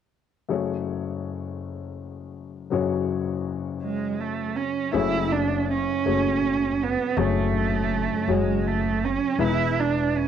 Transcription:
0.48 2.67 F#1 soft
0.48 2.67 F#2 soft
0.48 2.66 A3 soft
0.48 2.67 F#4 soft
0.48 2.67 G#4 soft
0.48 2.67 C#5 medium
2.70 4.90 F#1 medium
2.70 4.90 F#2 medium
2.70 4.89 F#3 medium
2.70 4.90 F#4 medium
2.70 4.90 G#4 medium
2.70 4.91 C#5 medium
3.83 4.21 G#3 medium
4.20 4.58 A3 medium
4.56 4.94 C#4 medium
4.93 5.83 F#1 medium
4.93 7.13 F#1 medium
4.93 7.13 F#2 soft
4.93 5.68 A3 medium
4.93 5.33 E4 medium
4.93 5.68 F#4 medium
4.93 5.68 G#4 medium
4.93 5.68 C#5 medium
5.32 5.69 D4 medium
5.70 6.85 C#4 medium
6.05 6.95 F#1 medium
6.05 6.80 A3 soft
6.05 6.80 F#4 soft
6.05 6.80 G#4 soft
6.05 6.80 C#5 medium
6.83 7.20 B3 medium
7.17 8.06 F#1 medium
7.17 9.35 F#1 soft
7.17 9.35 F#2 soft
7.17 7.91 A3 medium
7.17 8.34 A3 medium
7.17 7.91 F#4 medium
7.17 7.91 G#4 medium
7.17 7.92 C#5 medium
8.28 9.16 F#1 medium
8.28 9.02 F#3 medium
8.28 9.02 F#4 soft
8.28 9.02 G#4 soft
8.28 9.02 C#5 medium
8.32 8.69 G#3 medium
8.67 9.06 A3 medium
9.05 9.40 C#4 medium
9.38 10.27 E1 medium
9.38 10.28 E2 medium
9.38 10.28 E3 medium
9.38 10.13 G#3 medium
9.38 10.13 B3 medium
9.38 10.13 E4 medium
9.38 10.13 B4 medium
9.43 9.81 E4 medium
9.80 10.18 D4 medium
10.17 10.28 C#4 medium

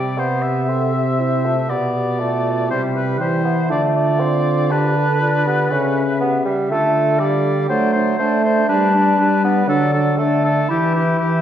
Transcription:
0.00 1.66 C3 soft
0.00 0.20 G3 medium
0.00 0.70 G4 soft
0.00 0.20 D5 soft
0.00 0.15 G5 soft
0.18 0.70 B3 medium
0.18 0.44 C5 soft
0.18 1.21 E5 soft
0.42 1.72 E5 soft
0.69 1.47 C4 medium
0.69 0.95 A4 soft
0.94 1.21 G4 soft
1.20 1.45 E4 soft
1.20 1.70 C5 soft
1.45 1.72 A3 soft
1.45 1.57 F4 soft
1.70 2.72 B2 soft
1.70 2.21 B3 medium
1.70 1.95 G4 soft
1.70 2.70 D5 soft
1.70 2.68 D5 soft
1.95 2.21 G4 soft
2.19 2.72 A3 medium
2.19 2.72 F4 soft
2.69 3.21 C3 soft
2.69 3.20 G3 medium
2.69 3.20 E4 soft
2.69 2.82 C5 soft
2.69 3.68 E5 soft
2.96 3.19 B4 soft
3.20 3.71 E3 soft
3.20 3.44 G3 medium
3.20 3.71 E4 soft
3.20 3.69 C5 soft
3.44 3.69 B3 medium
3.69 5.70 D3 medium
3.69 4.22 A3 medium
3.69 4.73 F4 soft
3.69 4.23 D5 soft
3.69 3.82 D5 medium
3.95 4.73 D5 soft
4.20 4.72 C4 medium
4.20 4.74 F5 soft
4.71 5.48 D4 medium
4.71 4.97 G4 soft
4.71 6.43 B4 medium
4.71 5.21 D5 soft
4.96 5.22 A4 medium
5.21 5.46 F4 soft
5.21 5.73 D5 soft
5.46 5.72 B3 medium
5.46 5.73 G4 soft
5.71 6.41 C#3 medium
5.71 6.03 C#4 medium
5.71 6.03 A4 soft
5.71 6.92 E5 soft
6.21 6.44 B3 medium
6.21 6.72 G4 soft
6.45 6.69 G3 medium
6.70 7.66 D3 medium
6.70 7.21 A3 medium
6.70 7.22 F4 soft
6.70 7.21 A4 medium
7.19 7.69 G3 medium
7.19 7.69 A4 soft
7.19 7.69 D5 soft
7.19 7.66 F5 medium
7.69 8.18 F#3 medium
7.69 8.13 A3 medium
7.69 7.94 D4 soft
7.69 7.92 C5 medium
7.69 7.94 D5 medium
7.93 8.19 D4 soft
7.93 8.18 C5 soft
7.93 8.19 D5 soft
8.18 8.63 A3 medium
8.18 8.69 A3 medium
8.18 8.44 D4 soft
8.18 8.43 C5 medium
8.18 8.45 D5 soft
8.44 8.69 D4 soft
8.44 8.68 C5 soft
8.44 8.70 D5 soft
8.69 9.13 G3 medium
8.69 9.42 D4 medium
8.69 8.94 D4 medium
8.69 8.94 B4 medium
8.69 8.95 D5 soft
8.95 9.18 D4 medium
8.95 9.19 B4 soft
8.95 9.19 D5 soft
9.19 9.63 G3 medium
9.19 9.43 D4 soft
9.19 9.44 B4 soft
9.19 9.43 D5 soft
9.44 9.70 B3 medium
9.44 9.68 D4 soft
9.44 9.68 B4 soft
9.44 9.68 D5 soft
9.67 10.12 D3 medium
9.67 10.19 F#3 medium
9.67 9.93 D4 medium
9.67 9.92 A4 medium
9.67 9.93 D5 medium
9.93 10.18 D4 soft
9.93 10.17 A4 soft
9.93 10.19 D5 soft
10.17 10.63 D3 medium
10.17 10.68 A3 medium
10.17 10.43 D4 soft
10.17 10.43 A4 soft
10.17 10.44 D5 soft
10.43 10.69 D4 soft
10.43 10.69 A4 soft
10.43 10.70 D5 soft
10.69 11.13 E3 medium
10.69 11.41 E4 medium
10.69 10.94 E4 soft
10.69 10.94 G4 soft
10.69 10.95 B4 soft
10.95 11.20 E4 soft
10.95 11.19 G4 soft
10.95 11.20 B4 soft
11.19 11.41 E3 medium
11.19 11.41 E4 soft
11.19 11.41 G4 soft
11.19 11.41 B4 soft

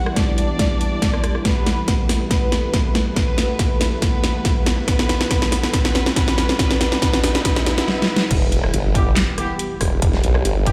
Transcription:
0.00 7.84 E3 medium
0.00 7.84 G3 medium
0.00 1.41 B3 medium
0.00 1.43 E4 medium
0.06 cross-stick medium
0.16 1.37 D4 medium
0.16 1.37 D5 loud
0.16 kick loud
0.16 snare medium
0.16 closed hi-hat medium
0.38 closed hi-hat medium
0.59 kick loud
0.59 snare medium
0.59 closed hi-hat medium
0.81 closed hi-hat soft
1.02 kick loud
1.02 snare medium
1.02 closed hi-hat medium
1.14 cross-stick medium
1.24 cross-stick medium
1.24 closed hi-hat medium
1.35 cross-stick medium
1.45 7.84 A3 medium
1.45 2.01 B3 medium
1.45 2.01 B4 medium
1.45 7.86 B4 medium
1.45 kick medium
1.45 snare medium
1.45 closed hi-hat medium
1.45 riser medium
1.66 snare medium
1.66 closed hi-hat medium
1.88 kick loud
1.88 snare medium
1.88 closed hi-hat medium
2.09 snare medium
2.09 open hi-hat loud
2.31 2.87 B3 medium
2.31 2.87 B4 medium
2.31 kick loud
2.31 snare medium
2.31 closed hi-hat medium
2.52 snare medium
2.52 closed hi-hat soft
2.74 kick loud
2.74 snare medium
2.74 closed hi-hat medium
2.95 snare medium
2.95 closed hi-hat medium
3.16 3.73 B3 medium
3.16 3.73 B4 loud
3.16 kick loud
3.16 snare medium
3.16 closed hi-hat medium
3.38 snare medium
3.38 closed hi-hat medium
3.59 kick loud
3.59 snare medium
3.59 closed hi-hat medium
3.81 snare medium
3.81 open hi-hat loud
4.02 4.58 B3 medium
4.02 4.58 B4 loud
4.02 kick loud
4.02 snare medium
4.02 closed hi-hat medium
4.24 snare medium
4.24 closed hi-hat soft
4.45 kick loud
4.45 snare medium
4.45 closed hi-hat medium
4.66 snare medium
4.66 closed hi-hat medium
4.88 5.29 B3 medium
4.88 5.29 B4 loud
4.88 kick loud
4.88 snare medium
4.88 closed hi-hat medium
4.99 snare medium
5.09 snare loud
5.09 closed hi-hat medium
5.21 snare medium
5.31 5.72 B3 medium
5.31 5.72 B4 loud
5.31 kick loud
5.31 snare loud
5.31 closed hi-hat medium
5.42 snare medium
5.52 snare loud
5.52 open hi-hat loud
5.63 snare medium
5.74 6.15 B3 medium
5.74 6.15 B4 loud
5.74 kick loud
5.74 snare loud
5.74 closed hi-hat medium
5.85 snare medium
5.95 snare loud
5.95 closed hi-hat medium
6.06 snare medium
6.16 6.58 B3 medium
6.16 6.58 B4 loud
6.16 kick loud
6.16 snare loud
6.16 closed hi-hat medium
6.28 snare medium
6.38 snare loud
6.38 closed hi-hat medium
6.49 snare medium
6.59 6.79 B3 medium
6.59 6.79 B4 loud
6.59 kick loud
6.59 snare loud
6.59 closed hi-hat medium
6.71 snare medium
6.81 7.01 B3 medium
6.81 7.01 B4 loud
6.81 snare loud
6.81 closed hi-hat medium
6.92 snare medium
7.02 7.22 B3 medium
7.02 7.22 B4 loud
7.02 kick loud
7.02 snare loud
7.02 closed hi-hat medium
7.13 snare medium
7.23 7.43 B3 medium
7.23 7.43 B4 loud
7.23 snare loud
7.23 open hi-hat loud
7.35 snare medium
7.45 7.65 B3 medium
7.45 7.65 B4 loud
7.45 kick loud
7.45 snare loud
7.45 closed hi-hat medium
7.56 snare medium
7.66 7.86 B3 medium
7.66 7.86 B4 loud
7.66 snare loud
7.66 closed hi-hat medium
7.78 snare loud
7.88 8.08 B3 medium
7.88 8.08 B4 loud
7.88 snare medium
8.02 snare medium
8.09 8.29 B3 medium
8.09 8.29 B4 loud
8.16 snare loud
8.31 8.72 E1 medium
8.31 10.72 E3 medium
8.31 10.72 G3 medium
8.31 10.72 B3 medium
8.31 10.72 G4 medium
8.31 kick loud
8.31 closed hi-hat medium
8.31 crash loud
8.31 impact medium
8.52 closed hi-hat medium
8.64 cross-stick medium
8.74 9.15 G1 loud
8.74 closed hi-hat medium
8.95 9.07 B3 medium
8.95 9.07 E4 medium
8.95 9.07 G4 medium
8.95 kick loud
8.95 closed hi-hat medium
9.16 snare loud
9.16 clap medium
9.16 closed hi-hat medium
9.38 9.57 B3 medium
9.38 9.57 E4 medium
9.38 9.57 G4 medium
9.38 cross-stick medium
9.38 closed hi-hat medium
9.59 closed hi-hat medium
9.81 10.22 E1 loud
9.81 kick medium
9.81 cross-stick medium
9.81 open hi-hat loud
10.02 kick loud
10.02 closed hi-hat medium
10.13 snare soft
10.24 10.43 B1 medium
10.24 closed hi-hat medium
10.35 cross-stick medium
10.45 10.72 G1 loud
10.45 closed hi-hat medium
10.66 10.72 B3 medium
10.66 10.72 E4 medium
10.66 10.72 G4 medium
10.66 kick loud
10.66 closed hi-hat medium

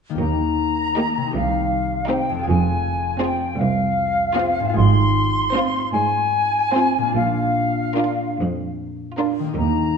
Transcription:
0.10 1.38 D#3 soft
0.10 1.35 A#3 soft
0.10 1.25 D#4 soft
0.15 0.93 D#2 soft
0.15 1.30 G4 soft
0.19 1.14 D#2 soft
0.19 1.31 A#5 soft
0.97 1.26 A#3 soft
0.97 1.25 D#4 soft
0.97 1.25 G4 soft
1.17 2.42 C3 soft
1.22 2.33 C4 soft
1.26 2.46 D#4 soft
1.31 2.49 G4 soft
1.35 2.27 C2 soft
1.35 2.07 C2 soft
1.35 2.11 F5 soft
2.10 2.39 C4 soft
2.10 2.38 D#4 soft
2.10 2.38 G4 soft
2.10 2.48 G5 soft
2.29 4.72 F2 soft
2.34 4.63 C4 soft
2.39 4.68 F4 soft
2.43 4.72 G#4 soft
2.48 3.17 F1 soft
2.48 3.37 F2 soft
2.48 3.19 G#5 soft
3.20 3.48 C4 soft
3.20 3.48 F4 soft
3.20 3.48 G#4 soft
3.20 3.58 G5 soft
3.57 4.56 C2 soft
3.57 4.78 F5 medium
4.36 4.68 C4 soft
4.36 4.68 F4 soft
4.36 4.67 G#4 soft
4.60 7.10 G#2 soft
4.65 7.12 C4 soft
4.69 7.10 F4 soft
4.73 5.51 G#1 soft
4.73 7.16 G#4 soft
4.77 5.72 G#2 medium
4.77 5.91 C6 medium
5.54 5.83 C4 soft
5.54 5.84 F4 soft
5.54 5.83 C5 soft
5.92 6.93 G#2 soft
5.92 7.12 G#5 medium
6.73 7.05 C4 soft
6.73 7.05 F4 soft
6.73 7.04 C5 soft
6.98 9.52 A#2 soft
7.02 9.43 A#3 soft
7.07 9.56 D4 soft
7.11 7.94 A#1 soft
7.11 9.58 F4 soft
7.16 8.17 A#2 soft
7.16 8.39 F5 soft
7.97 8.28 D4 soft
7.97 8.28 F4 soft
7.97 8.28 A#4 soft
8.39 9.36 F2 soft
9.18 9.48 D4 soft
9.18 9.47 F4 soft
9.18 9.47 A#4 soft
9.39 9.97 D#3 soft
9.44 9.97 A#3 soft
9.48 9.97 D#4 soft
9.53 9.97 D#2 soft
9.53 9.97 G4 soft
9.53 9.97 A#5 soft
9.57 9.97 D#2 soft

